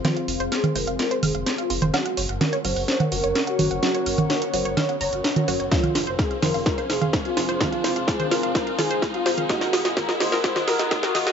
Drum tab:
HH |xxoxxxoxxxoxxxox|xxoxxxooxxoxxxox|xxoxxxoxxxoxxxox|xxoxxxooxxoxxxox|
SD |o---o---o---o---|o---o---o---o---|o---o---o---o---|o-o-o-o-o-o-o-o-|
CG |O----O----O----O|----O----O----O-|---O----O----O--|-O----O----O----|
BD |----------------|----------------|----------------|o---o---o---o---|

HH |xxoxxxoxxxoxxxox|xxoxxxooxxoxxxox|
SD |o-o-o-o-o-o-o-o-|oooooooooooooooo|
CG |O----O----O----O|----O----O----O-|
BD |o---o---o---o---|o---o---o---o---|